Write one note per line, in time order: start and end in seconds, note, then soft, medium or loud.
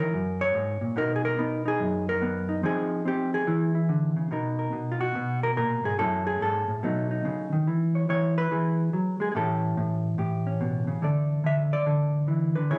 0.00 0.11 C#3 medium
0.00 0.13 E3 medium
0.00 0.12 D#4 soft
0.00 0.82 A#4 loud
0.00 0.13 C#5 loud
0.13 0.54 F#2 medium
0.41 0.97 C#5 loud
0.55 0.81 G#2 medium
0.81 0.96 A#2 medium
0.96 1.79 B2 medium
0.96 1.37 B3 medium
0.96 1.38 D#4 soft
0.96 1.15 A#4 loud
1.16 1.24 G#4 medium
1.25 1.67 A#4 medium
1.39 2.20 B3 medium
1.39 1.64 D#4 soft
1.66 2.48 D#4 soft
1.66 2.08 G#4 loud
1.80 2.63 F#2 medium
2.09 2.64 A#4 loud
2.22 2.61 B3 medium
2.49 2.61 D#4 soft
2.63 3.45 F3 medium
2.63 3.04 C4 medium
2.63 3.46 D#4 medium
2.63 3.06 G#4 loud
3.05 3.45 C4 medium
3.05 3.33 G4 medium
3.34 4.31 G#4 medium
3.47 4.31 E3 medium
3.47 3.74 E4 medium
3.75 4.29 E4 soft
3.89 4.16 D3 medium
4.16 4.30 C#3 medium
4.31 4.71 B2 medium
4.31 5.97 B3 soft
4.31 5.97 D#4 soft
4.31 4.58 A#4 soft
4.59 5.00 A#4 soft
4.73 5.14 B2 medium
4.92 5.00 F4 medium
5.01 5.42 F#4 medium
5.15 5.99 B2 medium
5.43 5.51 A#4 medium
5.56 5.83 A#2 medium
5.56 5.98 A#4 medium
5.84 5.98 G#2 medium
5.84 5.99 G#4 medium
5.98 6.40 F#2 medium
5.98 6.81 A3 soft
5.98 6.81 C#4 soft
5.98 6.26 E4 medium
5.98 6.40 A4 loud
6.27 6.83 G#4 medium
6.40 6.67 G#2 medium
6.40 7.52 A4 medium
6.68 6.82 A2 medium
6.83 7.24 B2 medium
6.83 7.65 F#3 medium
6.83 7.67 A3 soft
6.83 7.10 D#4 medium
7.11 7.65 D#4 soft
7.25 7.52 C#3 medium
7.53 7.67 D#3 medium
7.67 8.09 E3 medium
7.95 8.10 C#5 soft
8.09 8.51 E3 medium
8.09 8.36 C#5 loud
8.38 9.35 B4 loud
8.51 8.93 E3 medium
8.51 9.20 G#4 soft
8.93 9.20 F#3 medium
9.20 9.34 G#3 medium
9.20 9.30 G#4 medium
9.32 9.76 A2 medium
9.32 12.27 E3 soft
9.32 9.35 G#4 medium
9.36 10.45 C#4 soft
9.36 10.18 G4 soft
9.36 10.61 A4 medium
9.77 10.17 A2 medium
10.18 11.00 A2 medium
10.18 11.01 G4 soft
10.47 11.01 C#4 soft
10.61 10.87 B2 medium
10.87 11.02 C#3 medium
11.02 11.43 D3 medium
11.02 12.70 A3 soft
11.02 11.86 A4 soft
11.02 11.45 D5 soft
11.44 11.85 D3 medium
11.44 11.62 E5 loud
11.73 12.70 D5 loud
11.86 12.54 D3 medium
11.86 12.55 A4 medium
12.28 12.55 E3 medium
12.55 12.70 D3 medium
12.55 12.70 B4 medium
12.70 12.78 C#3 medium
12.70 12.78 E3 soft
12.70 12.78 E4 medium
12.70 12.78 G#4 soft
12.70 12.78 C#5 medium